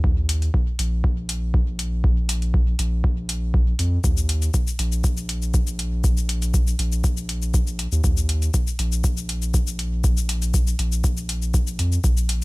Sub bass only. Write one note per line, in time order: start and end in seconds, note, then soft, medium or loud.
0.79 2.75 A#1 medium
2.79 3.53 A#1 medium
3.54 3.74 A#1 medium
3.79 3.99 F2 medium
4.04 4.50 D#2 medium
4.79 6.75 A#1 medium
6.79 7.87 A#1 medium
7.92 8.01 D#2 medium
8.79 10.75 A#1 medium
10.79 11.78 A#1 medium
11.79 11.99 F2 medium
12.04 12.44 A#1 medium